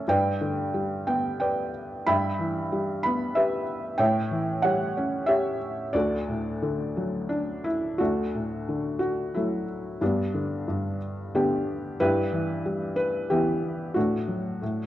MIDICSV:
0, 0, Header, 1, 2, 480
1, 0, Start_track
1, 0, Key_signature, 2, "major"
1, 0, Tempo, 666667
1, 49, Time_signature, 3, 2, 24, 8
1, 1488, Tempo, 645856
1, 4368, Tempo, 681044
1, 6768, Tempo, 658617
1, 10788, End_track
2, 0, Start_track
2, 0, Title_t, "Felt piano"
2, 0, Program_c, 0, 0
2, 0, Control_c, 0, 64, 127
2, 55, Note_on_c, 0, 43, 61
2, 57, Control_c, 0, 64, 0
2, 63, Note_on_c, 0, 79, 81
2, 65, Note_on_c, 0, 71, 57
2, 67, Note_on_c, 0, 74, 48
2, 205, Control_c, 0, 64, 127
2, 296, Note_on_c, 0, 50, 38
2, 533, Note_on_c, 0, 55, 48
2, 750, Note_off_c, 0, 71, 0
2, 751, Note_off_c, 0, 74, 0
2, 760, Note_off_c, 0, 79, 0
2, 771, Note_on_c, 0, 59, 48
2, 771, Note_on_c, 0, 79, 67
2, 996, Note_off_c, 0, 79, 0
2, 1007, Note_on_c, 0, 79, 65
2, 1014, Note_on_c, 0, 71, 48
2, 1015, Note_on_c, 0, 74, 48
2, 1223, Note_off_c, 0, 50, 0
2, 1460, Note_off_c, 0, 55, 0
2, 1461, Note_off_c, 0, 71, 0
2, 1461, Note_off_c, 0, 74, 0
2, 1462, Note_off_c, 0, 43, 0
2, 1466, Note_off_c, 0, 59, 0
2, 1486, Note_off_c, 0, 79, 0
2, 1487, Note_on_c, 0, 83, 86
2, 1492, Note_on_c, 0, 43, 60
2, 1494, Note_on_c, 0, 76, 62
2, 1496, Control_c, 0, 64, 0
2, 1497, Note_on_c, 0, 79, 59
2, 1641, Control_c, 0, 64, 127
2, 1729, Note_on_c, 0, 52, 43
2, 1977, Note_on_c, 0, 55, 48
2, 2184, Note_off_c, 0, 76, 0
2, 2186, Note_off_c, 0, 79, 0
2, 2196, Note_off_c, 0, 83, 0
2, 2207, Note_on_c, 0, 83, 79
2, 2225, Note_on_c, 0, 59, 49
2, 2445, Note_on_c, 0, 76, 74
2, 2453, Note_off_c, 0, 83, 0
2, 2453, Note_on_c, 0, 71, 53
2, 2458, Note_on_c, 0, 67, 49
2, 2654, Note_off_c, 0, 52, 0
2, 2893, Note_off_c, 0, 43, 0
2, 2894, Note_off_c, 0, 55, 0
2, 2894, Note_off_c, 0, 71, 0
2, 2896, Note_off_c, 0, 67, 0
2, 2906, Note_off_c, 0, 59, 0
2, 2909, Note_on_c, 0, 79, 83
2, 2912, Note_off_c, 0, 76, 0
2, 2918, Note_on_c, 0, 45, 70
2, 2921, Note_on_c, 0, 73, 59
2, 2924, Note_on_c, 0, 76, 58
2, 2931, Control_c, 0, 64, 0
2, 3054, Control_c, 0, 64, 127
2, 3156, Note_on_c, 0, 52, 47
2, 3387, Note_on_c, 0, 78, 78
2, 3391, Note_off_c, 0, 73, 0
2, 3401, Note_on_c, 0, 55, 53
2, 3402, Note_on_c, 0, 73, 63
2, 3409, Note_off_c, 0, 79, 0
2, 3613, Note_off_c, 0, 76, 0
2, 3646, Note_on_c, 0, 61, 53
2, 3845, Note_off_c, 0, 78, 0
2, 3864, Note_on_c, 0, 76, 75
2, 3870, Note_off_c, 0, 73, 0
2, 3878, Note_on_c, 0, 67, 50
2, 3881, Note_on_c, 0, 73, 48
2, 4092, Note_off_c, 0, 52, 0
2, 4331, Note_off_c, 0, 76, 0
2, 4338, Note_off_c, 0, 45, 0
2, 4338, Note_off_c, 0, 67, 0
2, 4339, Note_off_c, 0, 73, 0
2, 4340, Note_off_c, 0, 55, 0
2, 4350, Note_off_c, 0, 61, 0
2, 4360, Note_on_c, 0, 74, 74
2, 4369, Note_on_c, 0, 38, 60
2, 4375, Note_on_c, 0, 69, 50
2, 4376, Note_on_c, 0, 66, 49
2, 4379, Control_c, 0, 64, 0
2, 4500, Control_c, 0, 64, 127
2, 4611, Note_on_c, 0, 45, 43
2, 4849, Note_on_c, 0, 50, 49
2, 5091, Note_on_c, 0, 54, 45
2, 5297, Note_off_c, 0, 74, 0
2, 5305, Note_off_c, 0, 66, 0
2, 5305, Note_off_c, 0, 69, 0
2, 5319, Note_on_c, 0, 62, 65
2, 5549, Note_off_c, 0, 45, 0
2, 5567, Note_on_c, 0, 64, 72
2, 5577, Note_off_c, 0, 62, 0
2, 5788, Note_off_c, 0, 38, 0
2, 5790, Note_off_c, 0, 50, 0
2, 5797, Note_off_c, 0, 54, 0
2, 5805, Note_on_c, 0, 66, 68
2, 5819, Note_off_c, 0, 64, 0
2, 5820, Note_on_c, 0, 57, 55
2, 5820, Note_on_c, 0, 62, 48
2, 5823, Note_on_c, 0, 38, 46
2, 5826, Control_c, 0, 64, 0
2, 5967, Control_c, 0, 64, 127
2, 6063, Note_on_c, 0, 45, 34
2, 6301, Note_on_c, 0, 50, 38
2, 6507, Note_off_c, 0, 57, 0
2, 6507, Note_off_c, 0, 62, 0
2, 6507, Note_off_c, 0, 66, 0
2, 6517, Note_on_c, 0, 66, 61
2, 6768, Note_on_c, 0, 64, 52
2, 6769, Note_off_c, 0, 66, 0
2, 6779, Note_on_c, 0, 54, 40
2, 6782, Note_on_c, 0, 57, 42
2, 6987, Note_off_c, 0, 45, 0
2, 7225, Note_off_c, 0, 64, 0
2, 7229, Note_off_c, 0, 38, 0
2, 7229, Note_off_c, 0, 50, 0
2, 7232, Note_off_c, 0, 57, 0
2, 7245, Note_off_c, 0, 54, 0
2, 7255, Note_on_c, 0, 43, 50
2, 7259, Note_on_c, 0, 62, 56
2, 7264, Control_c, 0, 64, 0
2, 7268, Note_on_c, 0, 55, 44
2, 7268, Note_on_c, 0, 59, 41
2, 7390, Control_c, 0, 64, 127
2, 7494, Note_on_c, 0, 50, 36
2, 7727, Note_off_c, 0, 43, 0
2, 7737, Note_on_c, 0, 43, 46
2, 7952, Note_off_c, 0, 62, 0
2, 7956, Note_off_c, 0, 55, 0
2, 7956, Note_off_c, 0, 59, 0
2, 8215, Note_off_c, 0, 50, 0
2, 8225, Note_on_c, 0, 59, 46
2, 8226, Note_on_c, 0, 50, 42
2, 8226, Note_on_c, 0, 62, 48
2, 8231, Note_on_c, 0, 67, 65
2, 8672, Note_off_c, 0, 43, 0
2, 8674, Note_off_c, 0, 59, 0
2, 8675, Note_off_c, 0, 62, 0
2, 8689, Note_off_c, 0, 50, 0
2, 8695, Note_off_c, 0, 67, 0
2, 8702, Note_on_c, 0, 64, 67
2, 8703, Note_on_c, 0, 71, 85
2, 8706, Note_on_c, 0, 67, 60
2, 8707, Note_on_c, 0, 43, 54
2, 8711, Control_c, 0, 64, 0
2, 8842, Control_c, 0, 64, 127
2, 8938, Note_on_c, 0, 52, 45
2, 9179, Note_on_c, 0, 55, 53
2, 9383, Note_off_c, 0, 64, 0
2, 9385, Note_off_c, 0, 67, 0
2, 9390, Note_off_c, 0, 71, 0
2, 9401, Note_on_c, 0, 71, 78
2, 9628, Note_off_c, 0, 71, 0
2, 9643, Note_off_c, 0, 52, 0
2, 9650, Note_on_c, 0, 67, 61
2, 9654, Note_on_c, 0, 52, 47
2, 9658, Note_on_c, 0, 64, 43
2, 9660, Note_on_c, 0, 59, 46
2, 10102, Note_off_c, 0, 43, 0
2, 10102, Note_off_c, 0, 55, 0
2, 10103, Note_off_c, 0, 64, 0
2, 10104, Note_off_c, 0, 59, 0
2, 10116, Note_off_c, 0, 52, 0
2, 10119, Note_on_c, 0, 66, 63
2, 10131, Note_on_c, 0, 62, 45
2, 10132, Note_on_c, 0, 45, 54
2, 10133, Note_on_c, 0, 57, 41
2, 10139, Control_c, 0, 64, 0
2, 10142, Note_off_c, 0, 67, 0
2, 10264, Control_c, 0, 64, 127
2, 10363, Note_on_c, 0, 54, 38
2, 10594, Note_off_c, 0, 45, 0
2, 10597, Note_off_c, 0, 54, 0
2, 10611, Note_on_c, 0, 45, 50
2, 10615, Control_c, 0, 64, 0
2, 10743, Control_c, 0, 64, 127
2, 10788, Note_off_c, 0, 45, 0
2, 10788, Note_off_c, 0, 57, 0
2, 10788, Note_off_c, 0, 62, 0
2, 10788, Note_off_c, 0, 66, 0
2, 10788, End_track
0, 0, End_of_file